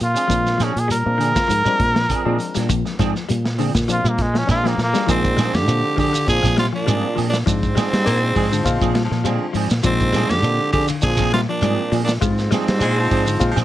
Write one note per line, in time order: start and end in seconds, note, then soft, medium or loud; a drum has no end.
0.00 0.15 A#2 medium
0.00 0.65 F4 loud
0.00 closed hi-hat medium
0.00 shekere soft
0.15 0.24 F3 medium
0.15 0.24 G#3 medium
0.15 0.24 C4 medium
0.15 0.34 C4 soft
0.15 0.24 D4 medium
0.15 0.33 G#4 medium
0.15 muted clean electric guitar stroke medium
0.15 closed hi-hat medium
0.15 shekere medium
0.28 0.69 A#2 loud
0.28 0.53 F3 loud
0.28 0.75 F3 medium
0.28 0.75 G#3 medium
0.28 0.75 C4 medium
0.28 0.75 D4 medium
0.28 kick medium
0.28 closed hi-hat medium
0.28 shekere medium
0.46 muted clean electric guitar stroke soft
0.46 snare soft
0.46 shekere soft
0.58 0.83 F3 medium
0.58 0.76 F3 medium
0.58 0.75 C4 medium
0.58 0.75 D4 medium
0.58 0.74 G#4 medium
0.58 snare soft
0.58 closed hi-hat medium
0.58 shekere medium
0.63 0.81 C#4 medium
0.75 1.02 A#2 medium
0.75 muted clean electric guitar stroke soft
0.75 closed hi-hat medium
0.75 shekere soft
0.80 0.91 G#4 medium
0.88 1.13 G3 medium
0.88 2.66 A#4 loud
0.88 closed hi-hat medium
0.88 shekere medium
1.05 1.32 A#2 loud
1.05 1.23 F3 medium
1.05 1.23 G#3 medium
1.05 1.23 C4 medium
1.05 1.23 D4 medium
1.05 muted clean electric guitar stroke soft
1.18 1.43 D3 medium
1.18 1.36 F3 medium
1.18 1.35 C4 medium
1.18 1.35 D4 medium
1.18 1.35 G#4 medium
1.18 closed hi-hat medium
1.18 shekere soft
1.35 1.53 F3 medium
1.35 1.53 G#3 medium
1.35 1.52 C4 medium
1.35 1.53 F4 medium
1.35 muted clean electric guitar stroke soft
1.35 kick medium
1.35 snare medium
1.35 shekere medium
1.48 1.64 G#2 loud
1.48 1.62 F3 medium
1.48 muted clean electric guitar stroke soft
1.48 closed hi-hat medium
1.48 shekere medium
1.65 2.02 F3 medium
1.65 1.89 G3 medium
1.65 2.02 G#3 medium
1.65 2.01 C4 medium
1.65 2.02 D4 loud
1.65 muted clean electric guitar stroke medium
1.65 muted fingered electric bass stroke soft
1.65 shekere medium
1.79 2.06 A#2 medium
1.79 muted clean electric guitar stroke medium
1.79 kick medium
1.79 closed hi-hat medium
1.95 2.19 F3 medium
1.95 snare medium
2.09 2.25 F3 medium
2.09 2.25 C4 medium
2.09 2.24 D4 medium
2.09 2.24 G#4 medium
2.09 kick medium
2.09 closed hi-hat medium
2.09 shekere medium
2.25 2.38 A#2 medium
2.25 2.50 F3 medium
2.25 2.96 F3 medium
2.25 2.39 F3 medium
2.25 2.96 G#3 medium
2.25 2.96 C4 medium
2.25 2.39 C4 medium
2.25 2.39 D4 medium
2.25 2.96 D4 loud
2.25 2.39 G#4 medium
2.39 muted clean electric guitar stroke soft
2.39 closed hi-hat medium
2.39 shekere soft
2.55 2.82 A#2 loud
2.55 2.66 G3 medium
2.55 2.73 C4 medium
2.55 2.73 D4 medium
2.55 muted clean electric guitar stroke medium
2.55 snare soft
2.55 closed hi-hat medium
2.55 shekere medium
2.69 2.93 F3 loud
2.69 kick medium
2.69 closed hi-hat medium
2.69 shekere medium
2.85 muted clean electric guitar stroke medium
2.85 snare soft
2.85 shekere soft
2.99 3.13 G#2 loud
2.99 3.15 F3 medium
2.99 3.23 F3 medium
2.99 3.14 C4 medium
2.99 3.14 D4 loud
2.99 3.14 G#4 loud
2.99 kick medium
2.99 snare soft
2.99 closed hi-hat medium
2.99 shekere medium
3.15 muted clean electric guitar stroke medium
3.15 snare soft
3.15 shekere soft
3.29 3.70 A#2 loud
3.29 3.53 G3 medium
3.29 closed hi-hat medium
3.29 shekere medium
3.45 muted clean electric guitar stroke soft
3.45 snare medium
3.58 3.83 D3 medium
3.58 3.75 F3 medium
3.58 3.74 C4 medium
3.58 3.73 D4 medium
3.58 3.73 G#4 medium
3.58 open hi-hat medium
3.58 shekere soft
3.74 4.01 A#2 medium
3.74 muted clean electric guitar stroke soft
3.74 kick medium
3.74 snare medium
3.74 shekere medium
3.88 4.01 F3 medium
3.88 4.25 F3 medium
3.88 4.25 G#3 medium
3.88 4.25 C4 medium
3.88 4.25 D4 medium
3.88 4.10 F4 loud
3.88 muted clean electric guitar stroke soft
3.88 closed hi-hat medium
3.88 shekere medium
4.04 4.43 A#2 loud
4.04 4.29 G3 medium
4.04 muted clean electric guitar stroke soft
4.04 shekere medium
4.09 4.23 A#3 medium
4.18 4.39 G#3 medium
4.18 muted clean electric guitar stroke soft
4.18 kick medium
4.18 snare soft
4.18 closed hi-hat medium
4.34 4.58 F3 medium
4.34 4.49 C#4 medium
4.34 snare medium
4.47 4.75 A#2 medium
4.47 4.75 F3 medium
4.47 4.64 F3 medium
4.47 4.75 G#3 medium
4.47 4.75 C4 medium
4.47 4.63 C4 medium
4.47 4.75 D4 medium
4.47 4.63 D4 medium
4.47 4.69 F4 loud
4.47 4.62 G#4 medium
4.47 kick medium
4.47 snare medium
4.47 shekere medium
4.64 4.88 F3 medium
4.64 4.77 F3 medium
4.64 4.79 A#3 medium
4.64 4.77 C4 medium
4.64 4.77 D4 medium
4.64 4.77 G#4 medium
4.64 snare medium
4.78 4.92 A#2 medium
4.78 muted clean electric guitar stroke soft
4.78 snare medium
4.78 shekere soft
4.83 5.10 A#3 loud
4.93 5.02 F3 medium
4.93 5.05 G3 medium
4.93 5.03 G#3 medium
4.93 5.02 C4 medium
4.93 5.07 C4 soft
4.93 5.03 D4 medium
4.93 5.07 D4 medium
4.93 5.07 G#4 medium
4.93 snare medium
4.93 shekere medium
5.07 5.56 G#2 medium
5.07 5.48 A#2 loud
5.07 5.31 F3 medium
5.07 5.44 F3 medium
5.07 5.24 F3 medium
5.07 5.44 G#3 medium
5.07 5.44 C4 medium
5.07 5.24 C4 medium
5.07 5.57 C4 loud
5.07 5.44 D4 medium
5.07 5.24 D4 medium
5.07 5.23 G#4 medium
5.07 kick loud
5.07 ride bell medium
5.07 shekere medium
5.25 muted clean electric guitar stroke soft
5.25 kick medium
5.25 shekere soft
5.37 5.55 F3 medium
5.37 5.61 G3 medium
5.37 5.55 C4 medium
5.37 5.55 D4 medium
5.37 5.54 G#4 medium
5.37 snare medium
5.37 ride bell medium
5.37 shekere loud
5.54 5.67 F2 medium
5.54 5.98 D3 medium
5.54 5.98 G4 loud
5.54 muted clean electric guitar stroke medium
5.54 snare medium
5.54 ride bell medium
5.54 shekere soft
5.67 5.82 A#2 loud
5.67 6.04 F3 medium
5.67 6.04 G#3 medium
5.67 6.04 C4 medium
5.67 6.04 D4 medium
5.67 ride bell medium
5.67 shekere medium
5.85 muted clean electric guitar stroke soft
5.97 6.12 D3 medium
5.97 6.27 D3 medium
5.97 6.10 F3 medium
5.97 6.14 F3 medium
5.97 6.13 C4 medium
5.97 6.13 D4 medium
5.97 6.27 G4 loud
5.97 6.13 G#4 medium
5.97 kick medium
5.97 open hi-hat medium
5.97 shekere soft
6.13 6.37 D3 medium
6.13 muted clean electric guitar stroke soft
6.13 muted fingered electric bass stroke soft
6.13 ride bell medium
6.13 shekere medium
6.27 6.42 A#2 loud
6.27 6.63 F3 medium
6.27 6.56 F3 medium
6.27 6.63 G#3 medium
6.27 6.63 C4 medium
6.27 6.63 D4 medium
6.27 6.56 G#4 loud
6.27 muted clean electric guitar stroke soft
6.27 kick medium
6.27 ride bell medium
6.27 shekere medium
6.43 6.70 A#2 loud
6.43 6.54 F3 medium
6.43 6.56 F3 medium
6.43 6.56 C4 medium
6.43 6.56 D4 medium
6.43 6.56 G#4 medium
6.43 kick medium
6.43 snare soft
6.43 shekere loud
6.57 6.66 C3 medium
6.57 6.70 G3 medium
6.57 6.66 F4 loud
6.57 muted clean electric guitar stroke soft
6.57 snare medium
6.57 ride bell medium
6.72 7.24 A#2 medium
6.72 6.84 F3 medium
6.72 7.24 D4 loud
6.72 muted clean electric guitar stroke soft
6.86 7.02 G#2 medium
6.86 7.23 F3 medium
6.86 7.06 F3 medium
6.86 7.11 G3 medium
6.86 7.23 G#3 medium
6.86 7.22 C4 medium
6.86 7.07 C4 medium
6.86 7.23 D4 medium
6.86 7.07 D4 medium
6.86 7.07 G#4 medium
6.86 ride bell medium
6.86 shekere loud
7.16 7.44 A#2 medium
7.16 7.40 F3 medium
7.16 7.33 F3 medium
7.16 7.32 C4 medium
7.16 7.33 D4 medium
7.16 7.32 G#4 medium
7.16 open hi-hat medium
7.16 shekere soft
7.29 7.37 A#2 medium
7.29 7.38 D4 medium
7.33 muted clean electric guitar stroke soft
7.33 snare medium
7.33 shekere medium
7.46 7.73 G#2 loud
7.46 9.23 G#2 medium
7.46 7.70 F3 medium
7.46 7.82 F3 medium
7.46 7.83 G#3 medium
7.46 7.83 C4 medium
7.46 9.22 C4 loud
7.46 7.83 D4 medium
7.46 kick medium
7.46 ride bell soft
7.46 shekere medium
7.63 muted clean electric guitar stroke soft
7.63 kick medium
7.63 shekere soft
7.75 7.93 F3 medium
7.75 8.00 G3 medium
7.75 7.92 C4 medium
7.75 7.91 D4 medium
7.75 7.90 G#4 medium
7.75 snare medium
7.75 ride bell medium
7.75 shekere medium
7.92 8.05 G3 medium
7.92 muted clean electric guitar stroke medium
7.92 snare medium
7.92 ride bell medium
7.92 shekere soft
8.04 8.33 A#2 loud
8.04 8.41 F3 medium
8.04 8.41 G#3 medium
8.04 8.20 A#3 loud
8.04 8.41 C4 medium
8.04 8.41 D4 medium
8.04 ride bell medium
8.04 shekere medium
8.23 muted clean electric guitar stroke soft
8.35 8.62 G#2 loud
8.35 8.49 F3 medium
8.35 8.52 F3 medium
8.35 8.51 G#3 loud
8.35 8.51 C4 medium
8.35 8.51 D4 medium
8.35 8.50 G#4 medium
8.35 kick medium
8.35 open hi-hat medium
8.35 shekere soft
8.51 8.76 D3 medium
8.51 9.02 F3 loud
8.51 muted clean electric guitar stroke medium
8.51 shekere medium
8.64 8.80 A#2 loud
8.64 9.01 F3 loud
8.64 9.01 G#3 loud
8.64 9.01 C4 loud
8.64 9.02 F4 loud
8.64 muted clean electric guitar stroke soft
8.64 kick medium
8.64 ride bell medium
8.64 shekere medium
8.81 9.07 A#2 medium
8.81 8.93 F3 medium
8.81 8.96 F3 medium
8.81 8.95 C4 medium
8.81 8.95 D4 medium
8.81 8.95 G#4 medium
8.81 kick medium
8.81 shekere medium
8.95 9.08 G3 medium
8.95 muted clean electric guitar stroke medium
8.95 snare medium
8.95 ride bell medium
9.04 9.27 F3 medium
9.11 9.37 A#2 loud
9.11 9.23 F3 medium
9.11 muted clean electric guitar stroke soft
9.11 snare soft
9.24 9.71 D3 medium
9.24 9.61 F3 medium
9.24 9.44 F3 medium
9.24 9.49 G3 medium
9.24 9.61 G#3 medium
9.24 9.61 C4 medium
9.24 9.44 C4 medium
9.24 9.45 D4 medium
9.24 9.61 F4 loud
9.24 9.45 G#4 medium
9.24 ride bell medium
9.24 shekere medium
9.53 9.69 G#2 medium
9.53 9.78 F3 medium
9.53 9.71 F3 medium
9.53 9.71 C4 medium
9.53 9.71 D4 medium
9.53 9.71 G#4 medium
9.53 open hi-hat medium
9.53 shekere soft
9.70 9.83 A#2 medium
9.70 muted clean electric guitar stroke soft
9.70 snare medium
9.70 ride bell medium
9.70 shekere medium
9.83 10.33 G#2 medium
9.83 10.24 A#2 loud
9.83 10.08 F3 loud
9.83 10.20 F3 medium
9.83 10.20 G#3 medium
9.83 10.20 C4 medium
9.83 10.32 C4 loud
9.83 10.20 D4 medium
9.83 kick loud
9.83 ride bell medium
9.83 shekere medium
10.00 muted clean electric guitar stroke soft
10.00 kick medium
10.00 shekere soft
10.13 10.31 F3 medium
10.13 10.37 G3 medium
10.13 10.31 C4 medium
10.13 10.31 D4 medium
10.13 10.30 G#4 medium
10.13 snare medium
10.13 ride bell medium
10.13 shekere loud
10.29 10.44 F2 medium
10.29 10.74 D3 medium
10.29 10.72 G4 loud
10.29 muted clean electric guitar stroke soft
10.29 snare medium
10.29 ride bell medium
10.29 shekere soft
10.43 10.58 A#2 loud
10.43 10.80 F3 medium
10.43 10.80 G#3 medium
10.43 10.80 C4 medium
10.43 10.80 D4 medium
10.43 ride bell medium
10.43 shekere medium
10.60 muted clean electric guitar stroke soft
10.73 10.88 D3 medium
10.73 10.90 F3 medium
10.73 10.89 C4 medium
10.73 10.89 D4 medium
10.73 10.86 G4 loud
10.73 10.88 G#4 medium
10.73 muted clean electric guitar stroke medium
10.73 kick medium
10.73 open hi-hat medium
10.73 shekere soft
10.88 11.13 D3 medium
10.88 muted clean electric guitar stroke soft
10.88 muted fingered electric bass stroke soft
10.88 ride bell medium
10.88 shekere medium
11.02 11.17 A#2 loud
11.02 11.38 F3 medium
11.02 11.32 F3 medium
11.02 11.39 G#3 medium
11.02 11.39 C4 medium
11.02 11.39 D4 loud
11.02 11.31 G#4 loud
11.02 muted clean electric guitar stroke soft
11.02 kick medium
11.02 ride bell medium
11.02 shekere medium
11.17 11.45 A#2 loud
11.17 11.30 F3 medium
11.17 11.32 F3 medium
11.17 11.32 C4 medium
11.17 11.32 D4 medium
11.17 11.33 G#4 medium
11.17 kick medium
11.17 snare soft
11.17 shekere loud
11.33 11.41 C3 medium
11.33 11.46 G3 medium
11.33 11.41 F4 loud
11.33 muted clean electric guitar stroke soft
11.33 snare medium
11.33 ride bell medium
11.49 11.99 A#2 medium
11.49 11.60 F3 medium
11.49 11.99 D4 loud
11.49 muted clean electric guitar stroke soft
11.62 11.77 G#2 medium
11.62 11.98 F3 medium
11.62 11.82 F3 medium
11.62 11.86 G3 medium
11.62 11.99 G#3 medium
11.62 11.98 C4 medium
11.62 11.82 C4 medium
11.62 11.98 D4 medium
11.62 11.82 D4 medium
11.62 11.82 G#4 medium
11.62 ride bell medium
11.62 shekere loud
11.92 12.18 A#2 loud
11.92 12.16 F3 medium
11.92 12.09 F3 medium
11.92 12.09 C4 medium
11.92 12.08 D4 medium
11.92 12.08 G#4 medium
11.92 open hi-hat medium
11.92 shekere soft
12.04 12.13 A#2 medium
12.04 12.13 D4 medium
12.04 shekere medium
12.09 muted clean electric guitar stroke soft
12.09 snare medium
12.21 12.48 G#2 loud
12.21 13.64 G#2 medium
12.21 12.57 F3 medium
12.21 12.57 G#3 medium
12.21 12.46 G#3 loud
12.21 12.57 C4 medium
12.21 13.64 C4 medium
12.21 12.57 F4 medium
12.21 kick loud
12.21 ride bell soft
12.21 shekere medium
12.39 muted clean electric guitar stroke medium
12.39 snare soft
12.39 shekere soft
12.51 12.68 F3 medium
12.51 12.75 G3 medium
12.51 12.68 C4 medium
12.51 12.68 D4 medium
12.51 12.68 G#4 medium
12.51 snare medium
12.51 ride bell soft
12.51 shekere loud
12.68 12.80 G3 medium
12.68 muted clean electric guitar stroke medium
12.68 snare medium
12.68 ride bell medium
12.68 shekere soft
12.79 13.07 A#2 loud
12.79 13.16 F3 medium
12.79 13.16 G#3 medium
12.79 13.00 G#3 loud
12.79 13.16 C4 medium
12.79 13.16 D4 medium
12.79 ride bell medium
12.79 shekere medium
12.98 13.51 F3 loud
12.98 muted clean electric guitar stroke medium
13.11 13.37 G#2 medium
13.11 13.27 F3 medium
13.11 13.26 C4 medium
13.11 13.26 D4 medium
13.11 13.26 G#4 medium
13.11 kick medium
13.11 open hi-hat medium
13.11 shekere soft
13.26 13.50 D3 medium
13.26 muted clean electric guitar stroke soft
13.26 shekere medium
13.40 13.55 A#2 loud
13.40 13.64 F3 loud
13.40 13.64 G#3 loud
13.40 13.64 C4 loud
13.40 13.64 F4 loud
13.40 muted clean electric guitar stroke soft
13.40 kick medium
13.40 ride bell medium
13.40 shekere medium
13.51 13.57 F3 loud
13.56 13.64 A#2 loud
13.56 13.64 F3 medium
13.56 13.64 C4 medium
13.56 13.64 D4 medium
13.56 13.64 G#4 medium
13.56 snare soft
13.56 shekere loud